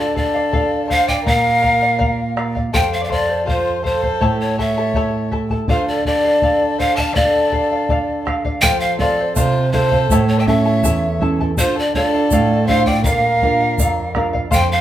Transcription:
Already playing: D3 A4 D5 F5
0.00 D5
0.15 A4 D5 F5, bombo low
0.34 D5 F5
0.53 A4 D5 F5, bombo low
0.88 A4 C5 D5 F5, bombo low
1.08 D5 F5 G5, bombo low
1.24 A#2 A#4 D5 F5, bombo low
1.62 A#4 D5 F5, bombo low
1.81 D5 F5
1.98 A#4 D5 F5, bombo low
2.37 A#4 D5 F5, bombo rim
2.55 D5 F5, bombo low
2.73 F2 A4 C5 F5 G5, bombo low
2.92 C5 F5
3.01 D5 F5
3.09 A4 C5 D5 F5, bombo low
3.28 C5 F5
3.46 F4 A4 C5 F5, bombo low
3.83 A4 C5 F5, bombo low
4.02 C5 F5, bombo low
4.20 A2 E4 A4 C#5 E5 A5, bombo low
4.40 A4 C#5
4.58 E4 A4 C#5 E5 A5, bombo low
4.78 E4 A4 A5
4.94 E4 A4 C#5 E5 A5, bombo low
5.31 E4 A4 E5 A5, bombo low
5.50 E4 A4 A5, bombo low
5.68 D3 F4 A4 C5 D5 F5, bombo low
5.88 A4 D5
6.05 A4 D5 F5, bombo low
6.24 D5 F5
6.42 A4 D5 F5, bombo low
6.79 A4 C5 D5 F5, bombo low
6.96 D5 F5 A5, bombo low
7.15 D3 A4 D5 F5, bombo low
7.52 A4 D5 F5, bombo low
7.71 D5 F5
7.89 A4 D5 F5, bombo low
8.25 A4 D5 F5, bombo rim, bombo low
8.45 D5 F5, bombo low
8.62 F3 A4 C5 F5 G5, bombo low, shaker
8.80 C5 F5
8.98 C4 F4 A4 C5 D5 F5, bombo low
9.19 C5 F5
9.36 C3 F4 A4 C5 F5, bombo low, shaker
9.73 C4 F4 A4 C5 F5, bombo low
9.92 C5 F5, bombo low
10.09 A2 E4 A4 C#5 E5 A5, bombo low, shaker
10.28 A4 C#5
10.39 E5 G5
10.46 C#4 E4 A4 C#5 E5 A5, bombo low
10.66 E4 A4 A5
10.83 E2 E4 A4 C#5 E5 A5, bombo low, shaker
11.20 C#4 E4 A4 E5 A5, bombo low
11.39 E4 A4 A5, bombo low
11.57 D3 F4 A4 C5 D5 F5, bombo low, shaker
11.76 A4 D5
11.94 D4 F4 A4 D5 F5, bombo low
12.14 D5 F5
12.31 A2 A4 D5 F5, bombo low, shaker
12.67 D4 F4 A4 C5 D5 F5, bombo low
12.86 D5 F5 G5, bombo low
13.04 A#2 A#4 D5 F5, bombo low, shaker
13.42 D4 F4 A#4 D5 F5, bombo low
13.60 D5 F5
13.78 F2 A#4 D5 F5, bombo low, shaker
14.15 D4 F4 A#4 D5 F5, bombo rim, bombo low
14.33 D5 F5, bombo low
14.51 F2 A4 C5 F5 G5, bombo low, shaker
14.55 C5
14.72 C5 F5

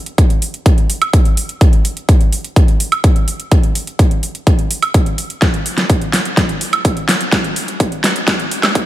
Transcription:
0.06 closed hi-hat
0.18 kick, closed hi-hat
0.30 closed hi-hat
0.42 open hi-hat
0.54 closed hi-hat
0.66 kick, closed hi-hat
0.78 closed hi-hat
0.90 open hi-hat
1.02 closed hi-hat, high woodblock
1.13 kick, closed hi-hat
1.25 closed hi-hat
1.37 open hi-hat
1.49 closed hi-hat
1.61 kick, closed hi-hat
1.73 closed hi-hat
1.85 open hi-hat
1.97 closed hi-hat
2.09 kick, closed hi-hat
2.21 closed hi-hat
2.33 open hi-hat
2.44 closed hi-hat
2.56 kick, closed hi-hat
2.68 closed hi-hat
2.80 open hi-hat
2.92 closed hi-hat, high woodblock
3.04 kick, closed hi-hat
3.16 closed hi-hat
3.28 open hi-hat
3.40 closed hi-hat
3.52 kick, closed hi-hat
3.63 closed hi-hat
3.75 open hi-hat
3.87 closed hi-hat
3.99 kick, closed hi-hat
4.11 closed hi-hat
4.23 open hi-hat
4.35 closed hi-hat
4.47 kick, closed hi-hat
4.59 closed hi-hat
4.71 open hi-hat
4.82 closed hi-hat, high woodblock
4.94 kick, closed hi-hat
5.06 closed hi-hat
5.18 open hi-hat
5.30 closed hi-hat
5.42 kick, snare, closed hi-hat
5.54 closed hi-hat
5.66 open hi-hat
5.78 snare, closed hi-hat
5.90 kick, closed hi-hat
6.02 closed hi-hat
6.13 snare, open hi-hat
6.25 closed hi-hat
6.37 kick, snare, closed hi-hat
6.49 closed hi-hat
6.61 open hi-hat
6.73 closed hi-hat, high woodblock
6.85 kick, closed hi-hat
6.97 closed hi-hat
7.09 snare, open hi-hat
7.21 closed hi-hat
7.32 kick, snare, closed hi-hat
7.44 closed hi-hat
7.56 open hi-hat
7.68 closed hi-hat
7.80 kick, closed hi-hat
7.92 closed hi-hat
8.04 snare, open hi-hat
8.16 closed hi-hat
8.28 kick, snare, closed hi-hat
8.40 closed hi-hat
8.51 open hi-hat
8.63 snare, closed hi-hat, high woodblock
8.75 kick, closed hi-hat

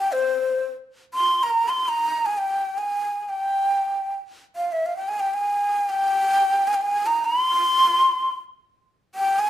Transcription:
0.00 G5
0.12 C5
1.14 C6
1.43 A#5
1.69 C6
1.88 A#5
2.26 G#5
2.38 G5
2.78 G#5
3.29 G5
4.56 F5
4.72 E5
4.86 F5
4.97 G5
5.08 G#5
5.20 G5
5.34 G#5
5.89 G5
6.67 G#5
6.74 G5
6.81 G#5
7.06 A#5
7.25 C6
9.15 G5
9.39 G#5

